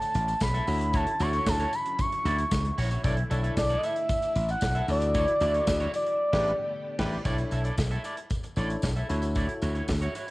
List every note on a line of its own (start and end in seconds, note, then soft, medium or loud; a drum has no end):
0.00 4.85 D3 medium
0.00 0.66 A3 medium
0.00 3.01 E4 medium
0.00 0.64 C#5 medium
0.00 0.42 A5 loud
0.00 muted clean electric guitar stroke soft
0.00 closed hi-hat medium
0.00 tambourine soft
0.14 0.33 A1 medium
0.14 closed hi-hat medium
0.14 tambourine soft
0.28 muted clean electric guitar stroke soft
0.28 closed hi-hat medium
0.28 tambourine soft
0.40 0.59 B1 medium
0.40 0.97 B5 loud
0.40 muted clean electric guitar stroke soft
0.40 kick loud
0.40 snare loud
0.40 clap medium
0.40 tambourine loud
0.54 0.67 E4 medium
0.54 0.68 A4 medium
0.54 0.68 E5 medium
0.54 closed hi-hat medium
0.67 1.04 D2 medium
0.67 3.02 F#3 medium
0.67 3.02 C#4 medium
0.67 1.09 E4 medium
0.67 1.10 F#4 medium
0.67 1.10 A4 medium
0.67 1.10 C#5 medium
0.67 muted clean electric guitar stroke soft
0.67 open hi-hat medium
0.67 tambourine medium
0.81 muted clean electric guitar stroke soft
0.81 closed hi-hat medium
0.93 1.11 E4 loud
0.93 1.07 F#4 loud
0.93 1.06 C#5 loud
0.93 1.23 A5 loud
0.93 kick loud
0.93 closed hi-hat medium
0.93 tambourine medium
1.07 muted clean electric guitar stroke soft
1.07 closed hi-hat medium
1.20 1.38 D2 loud
1.20 1.64 E4 medium
1.20 1.33 E4 medium
1.20 1.64 F#4 medium
1.20 1.33 F#4 medium
1.20 1.64 A4 medium
1.20 1.64 C#5 medium
1.20 1.33 D5 medium
1.20 1.50 C#6 loud
1.20 closed hi-hat medium
1.20 tambourine medium
1.33 1.46 E4 medium
1.33 1.46 F#4 medium
1.33 1.46 C#5 medium
1.33 closed hi-hat medium
1.33 tambourine soft
1.46 1.65 D2 medium
1.46 1.76 A5 loud
1.46 muted clean electric guitar stroke soft
1.46 kick loud
1.46 snare loud
1.46 clap medium
1.46 tambourine medium
1.59 1.72 E4 medium
1.59 1.73 F#4 medium
1.59 1.73 C#5 medium
1.59 closed hi-hat medium
1.73 2.02 B5 loud
1.73 muted clean electric guitar stroke soft
1.73 closed hi-hat medium
1.73 tambourine medium
1.86 muted clean electric guitar stroke soft
1.86 closed hi-hat medium
1.99 2.79 C#6 loud
1.99 kick loud
1.99 closed hi-hat medium
1.99 tambourine medium
2.12 muted clean electric guitar stroke soft
2.12 closed hi-hat medium
2.25 2.44 D2 medium
2.25 2.42 E4 medium
2.25 2.38 F#4 medium
2.25 2.38 D5 loud
2.25 closed hi-hat medium
2.25 tambourine medium
2.38 muted clean electric guitar stroke soft
2.38 closed hi-hat medium
2.38 tambourine soft
2.51 2.70 C#2 medium
2.51 muted clean electric guitar stroke soft
2.51 kick loud
2.51 snare loud
2.51 clap medium
2.51 tambourine loud
2.65 muted clean electric guitar stroke soft
2.65 closed hi-hat medium
2.78 2.96 A#1 medium
2.78 2.91 E4 medium
2.78 2.90 F#4 loud
2.78 2.90 C#5 loud
2.78 open hi-hat medium
2.78 tambourine medium
2.91 3.02 E4 soft
2.91 3.04 F#4 medium
2.91 3.04 C#5 medium
2.91 closed hi-hat medium
2.91 tambourine soft
3.03 3.23 B1 loud
3.03 4.87 A3 medium
3.03 3.15 D4 medium
3.03 6.17 D4 medium
3.03 3.21 E4 medium
3.03 3.15 E4 medium
3.03 6.17 E4 medium
3.03 3.17 A4 loud
3.03 3.16 A4 medium
3.03 3.16 C#5 medium
3.03 3.16 D5 loud
3.03 kick loud
3.03 closed hi-hat medium
3.03 tambourine medium
3.17 muted clean electric guitar stroke soft
3.17 closed hi-hat medium
3.30 3.49 B1 loud
3.30 3.75 D4 loud
3.30 3.43 E4 medium
3.30 3.75 E4 medium
3.30 3.42 A4 medium
3.30 3.75 A4 medium
3.30 3.75 C#5 medium
3.30 3.42 E5 medium
3.30 closed hi-hat medium
3.30 tambourine medium
3.43 3.55 E4 medium
3.43 3.56 A4 medium
3.43 3.56 E5 medium
3.43 closed hi-hat medium
3.57 3.75 B1 loud
3.57 3.79 D5 medium
3.57 muted clean electric guitar stroke soft
3.57 kick loud
3.57 snare loud
3.57 clap medium
3.57 tambourine loud
3.69 3.82 E4 medium
3.69 3.82 A4 medium
3.69 3.84 D5 loud
3.69 closed hi-hat medium
3.77 3.86 D#5 medium
3.83 3.96 E4 medium
3.83 3.96 A4 medium
3.83 3.96 E5 medium
3.83 4.50 E5 loud
3.83 closed hi-hat medium
3.83 tambourine soft
3.96 muted clean electric guitar stroke soft
3.96 closed hi-hat medium
4.09 muted clean electric guitar stroke soft
4.09 kick loud
4.09 closed hi-hat medium
4.09 tambourine medium
4.22 muted clean electric guitar stroke soft
4.22 closed hi-hat medium
4.22 tambourine soft
4.36 4.54 A1 loud
4.36 closed hi-hat medium
4.36 tambourine soft
4.48 4.87 F#5 loud
4.48 muted clean electric guitar stroke soft
4.48 closed hi-hat medium
4.48 tambourine soft
4.61 4.80 B1 loud
4.61 muted clean electric guitar stroke medium
4.61 kick loud
4.61 snare loud
4.61 clap medium
4.61 tambourine loud
4.75 4.87 E4 medium
4.75 4.89 A4 medium
4.75 4.89 E5 medium
4.75 closed hi-hat medium
4.88 5.25 D2 medium
4.88 6.19 D3 medium
4.88 6.19 F#3 medium
4.88 5.31 E4 medium
4.88 5.31 F#4 medium
4.88 5.31 A4 medium
4.88 5.31 D5 medium
4.88 5.91 D5 loud
4.88 muted clean electric guitar stroke soft
4.88 open hi-hat medium
4.88 tambourine medium
5.00 muted clean electric guitar stroke soft
5.00 closed hi-hat medium
5.00 tambourine soft
5.14 5.31 E4 loud
5.14 5.27 F#4 loud
5.14 5.27 C#5 loud
5.14 kick loud
5.14 closed hi-hat loud
5.14 tambourine medium
5.28 muted clean electric guitar stroke soft
5.28 closed hi-hat medium
5.40 5.59 D2 loud
5.40 5.54 E4 medium
5.40 5.85 E4 medium
5.40 5.85 F#4 medium
5.40 5.53 F#4 medium
5.40 5.85 A4 medium
5.40 5.48 C5 medium
5.40 5.54 D5 medium
5.40 closed hi-hat medium
5.40 tambourine medium
5.48 5.89 D5 medium
5.54 5.66 E4 soft
5.54 5.67 F#4 medium
5.54 5.67 C#5 medium
5.54 closed hi-hat medium
5.67 5.86 D2 medium
5.67 kick loud
5.67 snare loud
5.67 clap medium
5.67 tambourine loud
5.80 5.92 E4 medium
5.80 5.93 F#4 medium
5.80 5.93 C#5 loud
5.80 closed hi-hat medium
5.94 6.96 D5 loud
5.94 muted clean electric guitar stroke soft
5.94 closed hi-hat medium
5.94 tambourine medium
6.07 muted clean electric guitar stroke medium
6.07 closed hi-hat medium
6.20 7.24 D3 medium
6.20 7.24 A3 medium
6.20 7.24 B3 medium
6.20 7.24 G4 medium
6.33 6.51 A1 loud
6.33 6.51 D4 loud
6.33 6.51 E4 loud
6.33 6.51 G4 medium
6.33 6.51 G4 loud
6.33 6.51 B4 medium
6.33 kick loud
6.33 snare loud
6.33 crash medium
6.41 6.55 D5 loud
6.99 7.17 A1 loud
6.99 7.17 D4 loud
6.99 7.17 E4 loud
6.99 7.17 G4 loud
6.99 7.17 G4 medium
6.99 7.17 B4 loud
6.99 kick loud
6.99 snare loud
6.99 crash medium
7.06 7.21 D5 loud
7.25 7.44 B1 medium
7.25 7.69 D4 medium
7.25 7.42 E4 medium
7.25 7.69 E4 medium
7.25 7.69 A4 medium
7.25 7.38 A4 medium
7.25 7.70 C#5 medium
7.25 7.37 D5 loud
7.25 kick loud
7.25 closed hi-hat medium
7.25 tambourine soft
7.38 muted clean electric guitar stroke soft
7.38 closed hi-hat medium
7.51 7.70 B1 medium
7.51 7.64 E4 medium
7.51 7.64 A4 medium
7.51 7.64 E5 medium
7.51 closed hi-hat medium
7.51 tambourine medium
7.64 7.76 E4 medium
7.64 7.77 A4 medium
7.64 7.77 D5 medium
7.64 closed hi-hat medium
7.64 tambourine soft
7.77 7.96 B1 loud
7.77 muted clean electric guitar stroke soft
7.77 kick loud
7.77 snare loud
7.77 clap medium
7.77 tambourine medium
7.91 8.03 E4 medium
7.91 8.03 A4 medium
7.91 8.05 E5 medium
7.91 closed hi-hat soft
8.04 8.17 E4 medium
8.04 8.17 A4 medium
8.04 8.16 D5 medium
8.04 closed hi-hat medium
8.04 tambourine soft
8.17 muted clean electric guitar stroke medium
8.17 closed hi-hat medium
8.30 kick loud
8.30 closed hi-hat medium
8.30 tambourine medium
8.43 muted clean electric guitar stroke soft
8.43 closed hi-hat soft
8.43 tambourine soft
8.56 8.75 A1 medium
8.56 8.90 D4 medium
8.56 8.73 E4 medium
8.56 8.90 E4 medium
8.56 8.90 A4 medium
8.56 8.70 A4 medium
8.56 8.90 C#5 medium
8.56 8.69 D5 medium
8.56 closed hi-hat medium
8.56 tambourine soft
8.70 muted clean electric guitar stroke soft
8.70 closed hi-hat soft
8.70 tambourine soft
8.82 9.01 B1 medium
8.82 muted clean electric guitar stroke soft
8.82 kick loud
8.82 snare loud
8.82 clap medium
8.82 tambourine medium
8.96 9.08 E4 medium
8.96 9.10 A4 medium
8.96 9.10 E5 medium
8.96 closed hi-hat soft
9.09 9.46 D2 medium
9.09 9.94 E4 medium
9.09 9.22 E4 medium
9.09 9.94 F#4 medium
9.09 9.22 F#4 medium
9.09 9.94 A4 medium
9.09 9.94 C#5 loud
9.09 9.21 C#5 medium
9.09 closed hi-hat medium
9.09 tambourine soft
9.22 muted clean electric guitar stroke soft
9.22 closed hi-hat medium
9.22 tambourine soft
9.35 9.52 E4 medium
9.35 9.49 F#4 medium
9.35 9.49 D5 medium
9.35 kick loud
9.35 closed hi-hat medium
9.35 tambourine soft
9.49 muted clean electric guitar stroke soft
9.49 closed hi-hat medium
9.62 9.80 D2 loud
9.62 9.75 E4 medium
9.62 9.74 F#4 medium
9.62 9.74 C#5 medium
9.62 closed hi-hat medium
9.62 tambourine medium
9.75 9.87 E4 medium
9.75 9.88 F#4 medium
9.75 9.88 C#5 medium
9.75 closed hi-hat soft
9.88 10.07 D2 medium
9.88 muted clean electric guitar stroke soft
9.88 kick loud
9.88 snare loud
9.88 clap medium
9.88 tambourine medium
10.01 10.14 E4 medium
10.01 10.14 F#4 medium
10.01 10.15 C#5 medium
10.01 closed hi-hat medium
10.15 10.28 E4 medium
10.15 10.28 F#4 medium
10.15 10.27 C#5 medium
10.15 closed hi-hat medium
10.15 tambourine soft